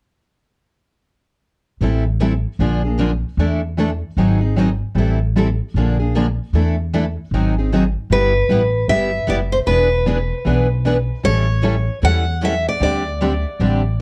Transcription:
1.81 2.44 A1 medium
1.81 2.03 E3 soft
1.81 2.03 G3 soft
1.81 2.03 C4 soft
1.81 2.04 E4 soft
1.81 2.04 A4 medium
2.21 2.32 E3 medium
2.21 2.32 G3 medium
2.21 2.33 C4 medium
2.21 2.33 E4 medium
2.21 2.33 A4 medium
2.59 3.22 A#1 medium
2.59 2.81 D3 medium
2.59 2.81 F3 medium
2.59 2.81 A#3 medium
2.59 2.81 D4 medium
2.59 2.81 G#4 medium
2.84 2.99 A#3 soft
2.84 2.99 D4 soft
2.84 2.99 G#4 soft
3.00 3.11 D3 medium
3.00 3.11 F3 medium
3.00 3.11 A#3 medium
3.00 3.11 D4 medium
3.00 3.11 G#4 medium
3.37 4.01 E2 medium
3.37 3.60 E3 soft
3.37 3.60 A3 soft
3.37 3.60 D4 soft
3.37 3.60 E4 medium
3.37 3.60 A4 medium
3.77 3.89 E3 medium
3.77 3.89 A3 medium
3.77 3.89 D4 medium
3.77 3.89 E4 medium
3.77 3.89 A4 medium
4.17 4.80 G#1 medium
4.17 4.38 D#3 medium
4.17 4.38 F#3 medium
4.17 4.39 C4 medium
4.17 4.39 D#4 medium
4.17 4.39 G#4 medium
4.41 4.56 C4 soft
4.41 4.56 D#4 soft
4.41 4.55 G#4 soft
4.56 4.68 D#3 medium
4.56 4.67 F#3 medium
4.56 4.68 C4 medium
4.56 4.68 D#4 medium
4.56 4.68 G#4 medium
4.95 5.58 A1 medium
4.95 5.16 E3 soft
4.95 5.16 G3 soft
4.95 5.16 C4 medium
4.95 5.16 E4 medium
4.95 5.16 A4 medium
5.36 5.47 E3 medium
5.36 5.46 G3 medium
5.36 5.47 C4 medium
5.36 5.47 E4 medium
5.36 5.47 A4 medium
5.74 6.37 A#1 medium
5.74 5.96 D3 soft
5.74 5.96 F3 medium
5.74 5.96 A#3 medium
5.74 5.96 D4 medium
5.74 5.97 G#4 medium
5.99 6.14 A#3 soft
5.99 6.13 D4 soft
5.99 6.13 G#4 soft
6.16 6.25 D3 medium
6.16 6.26 F3 medium
6.16 6.26 A#3 medium
6.16 6.26 D4 medium
6.16 6.26 G#4 medium
6.53 7.16 E2 medium
6.53 6.74 E3 soft
6.53 6.75 A3 soft
6.53 6.75 D4 soft
6.53 6.75 E4 soft
6.53 6.75 A4 soft
6.93 7.04 E3 medium
6.93 7.04 A3 medium
6.93 7.04 D4 medium
6.93 7.04 E4 medium
6.93 7.04 A4 medium
7.31 7.94 G#1 medium
7.31 7.53 D#3 soft
7.31 7.54 F#3 medium
7.31 7.54 C4 medium
7.31 7.54 D#4 medium
7.31 7.54 G#4 medium
7.58 7.71 C4 soft
7.58 7.72 D#4 soft
7.58 7.71 G#4 soft
7.72 7.82 D#3 medium
7.72 7.83 F#3 medium
7.72 7.82 C4 medium
7.72 7.83 D#4 medium
7.72 7.83 G#4 medium
8.10 8.41 G1 medium
8.10 8.31 G3 soft
8.10 8.31 B3 medium
8.10 8.31 E4 soft
8.10 8.32 G4 medium
8.10 8.89 B4 medium
8.49 8.82 A1 medium
8.49 8.60 G3 medium
8.49 8.60 B3 medium
8.49 8.60 E4 medium
8.49 8.60 G4 medium
8.88 9.21 G1 medium
8.88 9.10 G3 medium
8.88 9.10 B3 medium
8.88 9.10 E4 soft
8.88 9.10 G4 medium
8.88 9.29 E5 medium
9.27 9.61 F#1 medium
9.27 9.38 G3 medium
9.27 9.38 B3 medium
9.27 9.39 E4 medium
9.27 9.39 G4 medium
9.27 9.36 D5 medium
9.52 9.57 C5 medium
9.67 10.30 E1 medium
9.67 9.88 E3 soft
9.67 9.88 B3 soft
9.67 9.88 D4 medium
9.67 9.88 G#4 medium
9.67 10.06 B4 medium
9.67 9.88 B4 medium
10.06 10.17 E3 medium
10.06 10.17 B3 medium
10.06 10.17 D4 medium
10.06 10.17 G#4 medium
10.06 10.18 B4 medium
10.45 11.08 B1 medium
10.45 10.66 E3 medium
10.45 10.66 B3 medium
10.45 10.67 D4 medium
10.45 10.67 G#4 medium
10.45 10.67 B4 medium
10.85 10.96 E3 medium
10.85 10.96 B3 medium
10.85 10.96 D4 medium
10.85 10.96 G#4 medium
10.85 10.97 B4 medium
11.23 11.87 A1 medium
11.23 11.45 E3 medium
11.23 11.44 G3 medium
11.23 11.45 C#4 medium
11.23 11.45 E4 medium
11.23 11.45 A4 medium
11.23 11.99 C#5 medium
11.63 11.74 E3 medium
11.63 11.74 G3 medium
11.63 11.74 C#4 medium
11.63 11.75 E4 medium
11.63 11.75 A4 medium
12.03 12.65 E2 medium
12.03 12.24 E3 medium
12.03 12.24 G3 medium
12.03 12.24 C#4 medium
12.03 12.24 E4 medium
12.03 12.24 A4 medium
12.03 12.44 F#5 medium
12.42 12.53 E3 medium
12.42 12.53 G3 medium
12.42 12.53 C#4 medium
12.42 12.53 E4 medium
12.42 12.53 A4 medium
12.42 12.65 E5 medium
12.68 12.81 D5 medium
12.80 13.43 D2 medium
12.80 13.01 D3 medium
12.80 13.01 G3 soft
12.80 13.01 C4 medium
12.80 13.01 D4 soft
12.80 13.02 G4 medium
12.80 13.18 D5 medium
13.21 13.32 D3 medium
13.21 13.31 G3 medium
13.21 13.32 C4 medium
13.21 13.32 D4 medium
13.21 13.32 G4 medium
13.60 14.01 A1 medium
13.60 13.81 D3 soft
13.60 13.81 G3 medium
13.60 13.81 C4 medium
13.60 13.81 D4 medium
13.60 13.81 G4 medium

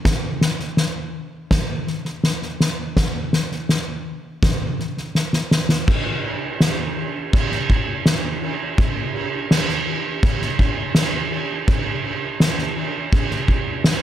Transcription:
0.05 kick loud
0.05 snare loud
0.41 snare medium
0.59 snare soft
0.77 snare medium
1.51 kick loud
1.51 snare loud
1.87 snare soft
2.05 snare soft
2.24 snare medium
2.42 snare soft
2.60 snare medium
2.97 kick medium
2.97 snare loud
3.33 snare medium
3.51 snare soft
3.69 snare medium
4.43 kick loud
4.43 snare loud
4.79 snare soft
4.97 snare soft
5.15 snare medium
5.33 snare medium
5.51 snare loud
5.69 snare medium
5.87 kick loud
5.87 crash loud
5.87 crash medium
6.24 crash medium
6.60 snare loud
6.60 crash medium
6.97 crash medium
7.33 kick loud
7.33 crash loud
7.52 snare soft
7.70 kick medium
7.70 crash medium
8.06 snare loud
8.06 crash medium
8.42 crash medium
8.78 kick loud
8.78 crash medium
9.15 crash medium
9.51 snare loud
9.51 crash loud
9.68 snare soft
9.86 crash medium
10.23 kick loud
10.23 crash loud
10.41 snare soft
10.59 kick medium
10.59 crash medium
10.95 snare loud
10.95 crash medium
11.32 crash medium
11.68 kick loud
11.68 crash medium
12.04 crash medium
12.40 snare loud
12.40 crash medium
12.58 snare soft
12.76 crash medium
13.13 kick loud
13.13 crash medium
13.31 snare soft
13.48 kick medium
13.48 crash medium
13.84 snare loud
13.84 crash loud

